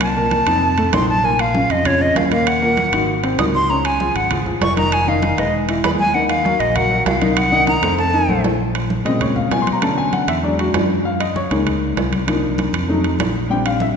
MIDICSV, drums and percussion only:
0, 0, Header, 1, 2, 480
1, 0, Start_track
1, 0, Key_signature, -5, "minor"
1, 0, Tempo, 306748
1, 20, Time_signature, 4, 2, 24, 8
1, 21852, End_track
2, 0, Start_track
2, 0, Title_t, "Drums"
2, 7, Note_on_c, 9, 63, 35
2, 11, Note_on_c, 9, 65, 110
2, 164, Note_off_c, 9, 63, 0
2, 167, Note_off_c, 9, 65, 0
2, 256, Note_on_c, 9, 63, 32
2, 412, Note_off_c, 9, 63, 0
2, 490, Note_on_c, 9, 63, 93
2, 490, Note_on_c, 9, 65, 61
2, 490, Note_on_c, 9, 66, 48
2, 646, Note_off_c, 9, 63, 0
2, 647, Note_off_c, 9, 65, 0
2, 647, Note_off_c, 9, 66, 0
2, 729, Note_on_c, 9, 65, 91
2, 736, Note_on_c, 9, 63, 37
2, 885, Note_off_c, 9, 65, 0
2, 893, Note_off_c, 9, 63, 0
2, 1214, Note_on_c, 9, 65, 66
2, 1217, Note_on_c, 9, 63, 32
2, 1371, Note_off_c, 9, 65, 0
2, 1374, Note_off_c, 9, 63, 0
2, 1454, Note_on_c, 9, 65, 103
2, 1454, Note_on_c, 9, 66, 89
2, 1459, Note_on_c, 9, 63, 83
2, 1610, Note_off_c, 9, 65, 0
2, 1610, Note_off_c, 9, 66, 0
2, 1616, Note_off_c, 9, 63, 0
2, 1704, Note_on_c, 9, 63, 70
2, 1860, Note_off_c, 9, 63, 0
2, 1941, Note_on_c, 9, 63, 35
2, 2098, Note_off_c, 9, 63, 0
2, 2180, Note_on_c, 9, 65, 89
2, 2182, Note_on_c, 9, 63, 30
2, 2336, Note_off_c, 9, 65, 0
2, 2338, Note_off_c, 9, 63, 0
2, 2418, Note_on_c, 9, 63, 97
2, 2422, Note_on_c, 9, 66, 56
2, 2574, Note_off_c, 9, 63, 0
2, 2578, Note_off_c, 9, 66, 0
2, 2656, Note_on_c, 9, 63, 34
2, 2661, Note_on_c, 9, 65, 61
2, 2812, Note_off_c, 9, 63, 0
2, 2818, Note_off_c, 9, 65, 0
2, 2891, Note_on_c, 9, 63, 33
2, 2891, Note_on_c, 9, 64, 78
2, 2901, Note_on_c, 9, 65, 94
2, 3048, Note_off_c, 9, 63, 0
2, 3048, Note_off_c, 9, 64, 0
2, 3057, Note_off_c, 9, 65, 0
2, 3138, Note_on_c, 9, 63, 34
2, 3295, Note_off_c, 9, 63, 0
2, 3374, Note_on_c, 9, 63, 86
2, 3383, Note_on_c, 9, 65, 71
2, 3383, Note_on_c, 9, 66, 84
2, 3530, Note_off_c, 9, 63, 0
2, 3540, Note_off_c, 9, 65, 0
2, 3540, Note_off_c, 9, 66, 0
2, 3613, Note_on_c, 9, 63, 72
2, 3624, Note_on_c, 9, 65, 73
2, 3770, Note_off_c, 9, 63, 0
2, 3780, Note_off_c, 9, 65, 0
2, 3858, Note_on_c, 9, 63, 32
2, 3863, Note_on_c, 9, 65, 105
2, 4015, Note_off_c, 9, 63, 0
2, 4019, Note_off_c, 9, 65, 0
2, 4101, Note_on_c, 9, 63, 34
2, 4257, Note_off_c, 9, 63, 0
2, 4335, Note_on_c, 9, 63, 97
2, 4342, Note_on_c, 9, 65, 61
2, 4342, Note_on_c, 9, 66, 58
2, 4492, Note_off_c, 9, 63, 0
2, 4498, Note_off_c, 9, 65, 0
2, 4498, Note_off_c, 9, 66, 0
2, 4578, Note_on_c, 9, 63, 35
2, 4582, Note_on_c, 9, 65, 92
2, 4734, Note_off_c, 9, 63, 0
2, 4738, Note_off_c, 9, 65, 0
2, 4823, Note_on_c, 9, 63, 36
2, 4979, Note_off_c, 9, 63, 0
2, 5063, Note_on_c, 9, 65, 68
2, 5064, Note_on_c, 9, 63, 35
2, 5220, Note_off_c, 9, 63, 0
2, 5220, Note_off_c, 9, 65, 0
2, 5302, Note_on_c, 9, 63, 85
2, 5302, Note_on_c, 9, 65, 98
2, 5302, Note_on_c, 9, 66, 80
2, 5458, Note_off_c, 9, 65, 0
2, 5458, Note_off_c, 9, 66, 0
2, 5459, Note_off_c, 9, 63, 0
2, 5539, Note_on_c, 9, 63, 67
2, 5696, Note_off_c, 9, 63, 0
2, 5782, Note_on_c, 9, 63, 35
2, 5938, Note_off_c, 9, 63, 0
2, 6023, Note_on_c, 9, 65, 91
2, 6025, Note_on_c, 9, 63, 30
2, 6180, Note_off_c, 9, 65, 0
2, 6182, Note_off_c, 9, 63, 0
2, 6261, Note_on_c, 9, 66, 52
2, 6262, Note_on_c, 9, 63, 100
2, 6418, Note_off_c, 9, 66, 0
2, 6419, Note_off_c, 9, 63, 0
2, 6503, Note_on_c, 9, 65, 70
2, 6508, Note_on_c, 9, 63, 35
2, 6660, Note_off_c, 9, 65, 0
2, 6664, Note_off_c, 9, 63, 0
2, 6739, Note_on_c, 9, 65, 91
2, 6745, Note_on_c, 9, 63, 34
2, 6745, Note_on_c, 9, 64, 83
2, 6895, Note_off_c, 9, 65, 0
2, 6901, Note_off_c, 9, 63, 0
2, 6901, Note_off_c, 9, 64, 0
2, 6979, Note_on_c, 9, 63, 32
2, 6979, Note_on_c, 9, 64, 67
2, 7135, Note_off_c, 9, 63, 0
2, 7135, Note_off_c, 9, 64, 0
2, 7217, Note_on_c, 9, 63, 86
2, 7222, Note_on_c, 9, 65, 71
2, 7222, Note_on_c, 9, 66, 91
2, 7374, Note_off_c, 9, 63, 0
2, 7379, Note_off_c, 9, 65, 0
2, 7379, Note_off_c, 9, 66, 0
2, 7458, Note_on_c, 9, 63, 85
2, 7468, Note_on_c, 9, 65, 73
2, 7614, Note_off_c, 9, 63, 0
2, 7625, Note_off_c, 9, 65, 0
2, 7692, Note_on_c, 9, 63, 35
2, 7702, Note_on_c, 9, 65, 98
2, 7849, Note_off_c, 9, 63, 0
2, 7859, Note_off_c, 9, 65, 0
2, 7935, Note_on_c, 9, 63, 33
2, 8091, Note_off_c, 9, 63, 0
2, 8175, Note_on_c, 9, 63, 94
2, 8181, Note_on_c, 9, 65, 58
2, 8181, Note_on_c, 9, 66, 51
2, 8331, Note_off_c, 9, 63, 0
2, 8337, Note_off_c, 9, 65, 0
2, 8337, Note_off_c, 9, 66, 0
2, 8414, Note_on_c, 9, 63, 34
2, 8422, Note_on_c, 9, 65, 87
2, 8570, Note_off_c, 9, 63, 0
2, 8578, Note_off_c, 9, 65, 0
2, 8653, Note_on_c, 9, 63, 31
2, 8810, Note_off_c, 9, 63, 0
2, 8898, Note_on_c, 9, 65, 75
2, 8903, Note_on_c, 9, 63, 39
2, 9055, Note_off_c, 9, 65, 0
2, 9059, Note_off_c, 9, 63, 0
2, 9140, Note_on_c, 9, 65, 97
2, 9140, Note_on_c, 9, 66, 88
2, 9141, Note_on_c, 9, 63, 89
2, 9296, Note_off_c, 9, 65, 0
2, 9296, Note_off_c, 9, 66, 0
2, 9298, Note_off_c, 9, 63, 0
2, 9374, Note_on_c, 9, 63, 72
2, 9530, Note_off_c, 9, 63, 0
2, 9619, Note_on_c, 9, 63, 36
2, 9776, Note_off_c, 9, 63, 0
2, 9850, Note_on_c, 9, 65, 81
2, 9856, Note_on_c, 9, 63, 32
2, 10006, Note_off_c, 9, 65, 0
2, 10012, Note_off_c, 9, 63, 0
2, 10092, Note_on_c, 9, 66, 59
2, 10103, Note_on_c, 9, 63, 93
2, 10248, Note_off_c, 9, 66, 0
2, 10259, Note_off_c, 9, 63, 0
2, 10333, Note_on_c, 9, 65, 65
2, 10339, Note_on_c, 9, 63, 33
2, 10489, Note_off_c, 9, 65, 0
2, 10495, Note_off_c, 9, 63, 0
2, 10572, Note_on_c, 9, 65, 88
2, 10578, Note_on_c, 9, 63, 36
2, 10578, Note_on_c, 9, 64, 86
2, 10728, Note_off_c, 9, 65, 0
2, 10734, Note_off_c, 9, 63, 0
2, 10734, Note_off_c, 9, 64, 0
2, 10820, Note_on_c, 9, 63, 37
2, 10977, Note_off_c, 9, 63, 0
2, 11051, Note_on_c, 9, 65, 71
2, 11051, Note_on_c, 9, 66, 92
2, 11054, Note_on_c, 9, 63, 76
2, 11207, Note_off_c, 9, 65, 0
2, 11207, Note_off_c, 9, 66, 0
2, 11211, Note_off_c, 9, 63, 0
2, 11291, Note_on_c, 9, 65, 65
2, 11295, Note_on_c, 9, 63, 78
2, 11447, Note_off_c, 9, 65, 0
2, 11451, Note_off_c, 9, 63, 0
2, 11528, Note_on_c, 9, 65, 107
2, 11537, Note_on_c, 9, 63, 38
2, 11684, Note_off_c, 9, 65, 0
2, 11693, Note_off_c, 9, 63, 0
2, 11774, Note_on_c, 9, 63, 34
2, 11930, Note_off_c, 9, 63, 0
2, 12006, Note_on_c, 9, 63, 89
2, 12006, Note_on_c, 9, 65, 65
2, 12006, Note_on_c, 9, 66, 57
2, 12162, Note_off_c, 9, 65, 0
2, 12162, Note_off_c, 9, 66, 0
2, 12163, Note_off_c, 9, 63, 0
2, 12249, Note_on_c, 9, 65, 89
2, 12406, Note_off_c, 9, 65, 0
2, 12494, Note_on_c, 9, 63, 35
2, 12495, Note_on_c, 9, 65, 69
2, 12650, Note_off_c, 9, 63, 0
2, 12652, Note_off_c, 9, 65, 0
2, 12724, Note_on_c, 9, 63, 36
2, 12881, Note_off_c, 9, 63, 0
2, 12970, Note_on_c, 9, 63, 91
2, 13126, Note_off_c, 9, 63, 0
2, 13207, Note_on_c, 9, 63, 60
2, 13213, Note_on_c, 9, 66, 86
2, 13364, Note_off_c, 9, 63, 0
2, 13370, Note_off_c, 9, 66, 0
2, 13453, Note_on_c, 9, 63, 33
2, 13609, Note_off_c, 9, 63, 0
2, 13692, Note_on_c, 9, 65, 89
2, 13849, Note_off_c, 9, 65, 0
2, 13930, Note_on_c, 9, 63, 95
2, 13932, Note_on_c, 9, 66, 50
2, 14087, Note_off_c, 9, 63, 0
2, 14089, Note_off_c, 9, 66, 0
2, 14171, Note_on_c, 9, 63, 33
2, 14175, Note_on_c, 9, 65, 71
2, 14327, Note_off_c, 9, 63, 0
2, 14332, Note_off_c, 9, 65, 0
2, 14409, Note_on_c, 9, 63, 34
2, 14409, Note_on_c, 9, 64, 83
2, 14411, Note_on_c, 9, 65, 82
2, 14565, Note_off_c, 9, 63, 0
2, 14565, Note_off_c, 9, 64, 0
2, 14567, Note_off_c, 9, 65, 0
2, 14645, Note_on_c, 9, 63, 34
2, 14645, Note_on_c, 9, 64, 72
2, 14801, Note_off_c, 9, 63, 0
2, 14801, Note_off_c, 9, 64, 0
2, 14882, Note_on_c, 9, 63, 79
2, 14888, Note_on_c, 9, 65, 69
2, 14888, Note_on_c, 9, 66, 82
2, 15038, Note_off_c, 9, 63, 0
2, 15045, Note_off_c, 9, 65, 0
2, 15045, Note_off_c, 9, 66, 0
2, 15120, Note_on_c, 9, 63, 77
2, 15134, Note_on_c, 9, 65, 75
2, 15277, Note_off_c, 9, 63, 0
2, 15291, Note_off_c, 9, 65, 0
2, 15363, Note_on_c, 9, 63, 35
2, 15367, Note_on_c, 9, 65, 101
2, 15519, Note_off_c, 9, 63, 0
2, 15524, Note_off_c, 9, 65, 0
2, 15603, Note_on_c, 9, 63, 32
2, 15760, Note_off_c, 9, 63, 0
2, 15846, Note_on_c, 9, 63, 84
2, 15848, Note_on_c, 9, 65, 55
2, 15848, Note_on_c, 9, 66, 50
2, 16002, Note_off_c, 9, 63, 0
2, 16005, Note_off_c, 9, 65, 0
2, 16005, Note_off_c, 9, 66, 0
2, 16089, Note_on_c, 9, 65, 93
2, 16092, Note_on_c, 9, 63, 33
2, 16246, Note_off_c, 9, 65, 0
2, 16249, Note_off_c, 9, 63, 0
2, 16334, Note_on_c, 9, 63, 34
2, 16491, Note_off_c, 9, 63, 0
2, 16574, Note_on_c, 9, 63, 35
2, 16574, Note_on_c, 9, 65, 68
2, 16731, Note_off_c, 9, 63, 0
2, 16731, Note_off_c, 9, 65, 0
2, 16809, Note_on_c, 9, 65, 93
2, 16809, Note_on_c, 9, 66, 85
2, 16817, Note_on_c, 9, 63, 81
2, 16966, Note_off_c, 9, 65, 0
2, 16966, Note_off_c, 9, 66, 0
2, 16973, Note_off_c, 9, 63, 0
2, 17299, Note_on_c, 9, 63, 34
2, 17455, Note_off_c, 9, 63, 0
2, 17534, Note_on_c, 9, 65, 84
2, 17539, Note_on_c, 9, 63, 30
2, 17690, Note_off_c, 9, 65, 0
2, 17695, Note_off_c, 9, 63, 0
2, 17773, Note_on_c, 9, 63, 91
2, 17774, Note_on_c, 9, 66, 56
2, 17930, Note_off_c, 9, 63, 0
2, 17931, Note_off_c, 9, 66, 0
2, 18013, Note_on_c, 9, 63, 32
2, 18014, Note_on_c, 9, 65, 70
2, 18169, Note_off_c, 9, 63, 0
2, 18170, Note_off_c, 9, 65, 0
2, 18254, Note_on_c, 9, 63, 34
2, 18254, Note_on_c, 9, 64, 81
2, 18255, Note_on_c, 9, 65, 82
2, 18411, Note_off_c, 9, 63, 0
2, 18411, Note_off_c, 9, 64, 0
2, 18412, Note_off_c, 9, 65, 0
2, 18494, Note_on_c, 9, 63, 34
2, 18651, Note_off_c, 9, 63, 0
2, 18733, Note_on_c, 9, 63, 75
2, 18735, Note_on_c, 9, 65, 74
2, 18735, Note_on_c, 9, 66, 81
2, 18889, Note_off_c, 9, 63, 0
2, 18892, Note_off_c, 9, 65, 0
2, 18892, Note_off_c, 9, 66, 0
2, 18973, Note_on_c, 9, 63, 78
2, 18975, Note_on_c, 9, 65, 65
2, 19129, Note_off_c, 9, 63, 0
2, 19131, Note_off_c, 9, 65, 0
2, 19215, Note_on_c, 9, 65, 95
2, 19216, Note_on_c, 9, 63, 34
2, 19371, Note_off_c, 9, 65, 0
2, 19372, Note_off_c, 9, 63, 0
2, 19453, Note_on_c, 9, 63, 36
2, 19610, Note_off_c, 9, 63, 0
2, 19689, Note_on_c, 9, 63, 101
2, 19698, Note_on_c, 9, 65, 72
2, 19698, Note_on_c, 9, 66, 54
2, 19846, Note_off_c, 9, 63, 0
2, 19855, Note_off_c, 9, 65, 0
2, 19855, Note_off_c, 9, 66, 0
2, 19929, Note_on_c, 9, 63, 33
2, 19936, Note_on_c, 9, 65, 91
2, 20086, Note_off_c, 9, 63, 0
2, 20093, Note_off_c, 9, 65, 0
2, 20161, Note_on_c, 9, 63, 33
2, 20318, Note_off_c, 9, 63, 0
2, 20403, Note_on_c, 9, 63, 37
2, 20411, Note_on_c, 9, 65, 67
2, 20559, Note_off_c, 9, 63, 0
2, 20567, Note_off_c, 9, 65, 0
2, 20637, Note_on_c, 9, 63, 83
2, 20654, Note_on_c, 9, 65, 92
2, 20654, Note_on_c, 9, 66, 76
2, 20793, Note_off_c, 9, 63, 0
2, 20811, Note_off_c, 9, 65, 0
2, 20811, Note_off_c, 9, 66, 0
2, 21123, Note_on_c, 9, 63, 36
2, 21279, Note_off_c, 9, 63, 0
2, 21360, Note_on_c, 9, 63, 34
2, 21370, Note_on_c, 9, 65, 94
2, 21517, Note_off_c, 9, 63, 0
2, 21526, Note_off_c, 9, 65, 0
2, 21598, Note_on_c, 9, 63, 102
2, 21616, Note_on_c, 9, 66, 51
2, 21754, Note_off_c, 9, 63, 0
2, 21772, Note_off_c, 9, 66, 0
2, 21852, End_track
0, 0, End_of_file